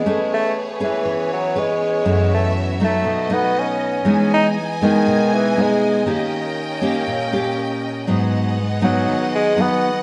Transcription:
Already playing: G#3 G#4
0.06 A3 B3 C#4 G#4 B4 C#5
0.34 A3
0.80 E3 C#4 G#4 B4
1.05 E3
1.33 F#3
1.55 G#3 C#4 G#4 B4
2.05 F#2 E3 A3 C#4 F#4 E5
2.34 A3
2.80 F#3 A3 D#4
2.84 A3
3.04 B2 B4 D#5
3.30 F#3 A3 D#4
3.34 B3
3.59 C#4
4.05 E3 G#3 B3 D#4 G#4 D#5 G#5
4.34 D#4
4.81 D#3 G#3 B3 D#4
5.07 B2
5.34 E3
5.57 G#3 B3 D#4
5.61 G#3
6.06 D#3 A#3 C#4 G4 A#4 G5
6.81 A#3 C#4 G4
7.07 A#2
7.32 A#3 C#4 G4
8.06 G#2 F#3 B3 D#4 G#4 D#5 F#5
8.81 F#3 B3 D#4
9.08 D#3
9.35 G#3
9.56 F#3 B3 D#4
9.61 B3

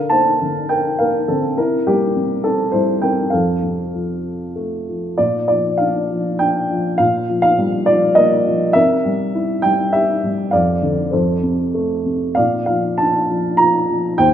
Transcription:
Already playing: D3 A#4 F5
0.10 A#3 C5 A5
0.41 D3
0.69 A#4 G5
0.99 A#3 A#4 F5
1.28 D3 C4 A4
1.57 C3 E4 A#4
1.87 G3 A#3 G4
2.16 C3
2.44 C4 A4
2.72 G3 E4 C5
3.02 C3 A#4 G5
3.30 F2 A4 F5
3.63 C3
3.94 F3
4.56 A3
4.88 F3
5.18 A#2 F4 D5
5.48 F3 D5
5.78 D4 F5
6.10 F3
6.39 D4 G5
6.71 F3
6.98 A#2 F5
7.29 F3
7.42 F5
7.58 G3
7.86 F3 D5
8.15 A#3 D#5
8.46 F3
8.73 C3 A#4 E5
9.05 G3
9.35 E4
9.62 G3 G5
9.93 G4 E5
10.24 G3
10.51 F2 D5 F5
10.82 D3
11.11 F2 A4 C5
11.43 C3
11.74 A3
12.06 C3
12.35 A#2 D5 F5
12.66 F3 F5
12.98 D4 A5
13.29 F3
13.57 F4 A#5
13.89 F3
14.18 D#2 C5 G5

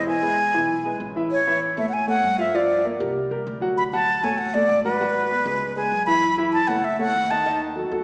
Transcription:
Already playing: E1
0.07 E3 E4 E5 G#5
0.21 G#3 G#4 B4
0.54 B1 E3 E4 E5
0.85 G#3 G#4 B4
1.00 A1
1.16 E3 E4 E5
1.31 C#5
1.47 E3 E4 E5
1.77 A2 A3 A4 C#5 E5
1.89 F#5
1.93 G#5
2.07 A3 A4 C#5 F#5
2.23 G2
2.38 F3 F4 E5 F5
2.54 F3 F4 D5 F5
2.85 A#3 A#4 D5
2.99 C2 G3 G4 A#4
3.31 C2 G3 G4 A#4
3.47 D2
3.61 F#3 F#4 F#5
3.77 B5
3.93 F#3 F#4 F#5 A5
4.23 A1 A3 A4 C#5 G#5
4.38 F#5
4.54 A3 A4 D5
4.69 G#1
4.84 F#3 F#4 B4 F#5
5.01 F#3 F#4 F#5
5.30 B3 B4 D5
5.45 C#2 G#3 G#4 B4
5.76 G#3 G#4 B4 G#5
5.92 F#2
6.06 E3 E4 E5 B5
6.38 E3 E4 E5
6.53 A5
6.68 C#2 A3 A4 C#5 F#5
6.84 E5
6.99 A3 A4 C#5 F#5
7.15 D#2
7.31 D#3 D#4 D#5 A5
7.46 D#3 D#4 D#5
7.76 F#3 F#4 A4
7.91 D2 F#3 F#4 A4

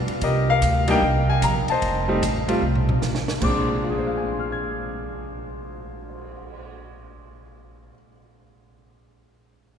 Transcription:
0.07 muted upright bass stroke, ride
0.21 C2 G4 A#4 D#5, kick, ride
0.50 A#4 F5
0.62 D2, kick, hi-hat pedal, ride
0.88 G3 A#3 D4 D#4 A#4 D#5 G5, ride
1.02 C2, kick
1.30 G#5
1.42 A#1 A#5, kick, hi-hat pedal, ride
1.68 C5 D#5 A5, muted upright bass stroke, ride
1.82 F1, kick, ride
2.08 G3 A3 C4 D#4
2.22 A1, kick, hi-hat pedal, ride
2.48 G3 A3 C4 F4, ride
2.62 C2
2.75 floor tom
2.89 floor tom
3.02 A1, snare, hi-hat pedal
3.15 snare
3.28 snare
3.41 A#1 A#2 G#3 C4 D4 D6, kick, crash
3.68 cymbal swell
3.82 F4
3.90 G#4
3.98 C5
4.07 F5
4.17 G#5
4.28 C6
4.39 F6
4.52 G#6

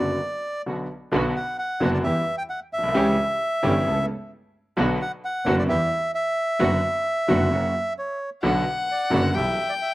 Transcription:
Already playing: F#1 F#2 D3 F#3 B3 D5
0.00 F#1 B3 D4 F#4
0.66 B1 B2 D3 F#3 B3 D4 F#4
1.12 B1 B2 D3 F#3 B3 D4 F#4
1.36 F#5
1.59 F#5
1.80 F#1 F#2 D3 F#3 B3 D4 F#4
1.93 D5
2.03 E2 E3 G3 B3 E4 G4 E5
2.38 G5
2.50 F#5
2.73 B1 E5
2.78 A#1
2.83 B1
2.88 C2
2.94 C#2 C#3 E3 G3 C#4 E4 G4
3.63 G1 G2 E3 G3 C#4 E4 G4
3.86 C#2 C#3 A3 B3 C#4 E4 A4
4.77 B1 B2 D3 F#3 B3 D4 F#4
5.02 F#5
5.25 F#5
5.46 F#1 F#2 D3 F#3 B3 D4 F#4
5.58 D5
5.68 E2 E3 G3 B3 E4 G4 E5
6.15 E5
6.59 F#1 F#2 D3 F#3 B3 D4 F#4
7.28 F#1 F#2 D3 F#3 B3 D4 F#4
7.51 F#1 F#2 C#3 F#3 A#3 C#4 F#4
7.99 C#5
8.43 B1 B2 D3 F#3 B3 D4 F#4 F#5
8.91 D5
9.10 F#1 F#2 D3 F#3 B3 D4 F#4
9.26 F#5
9.34 B1 B2 E3 G3 B3 E4 G4 E5 G5
9.69 D5
9.82 E5

